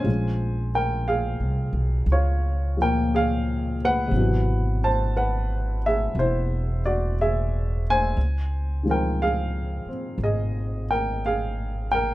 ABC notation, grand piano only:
X:1
M:4/4
L:1/8
Q:"Swing" 1/4=59
K:Bbdor
V:1 name="Grand piano"
[ca] [Bg] [Af]2 [Fd] [Bg] [Af] [_c_g]- | [_c_g] [=c=a] [=Bg] [_A=e] [=Ec] [_G=d] [Ae] [c_a]- | [ca] [Bg] [Af]2 [Ae] [Bg] [Af] [Bg] |]
V:2 name="Grand piano" clef=bass
[F,A,D]4- [F,A,D] [B,,F,]3 | [=B,,C,=E,_G,]8 | z [E,F,A,C]2 C4- C |]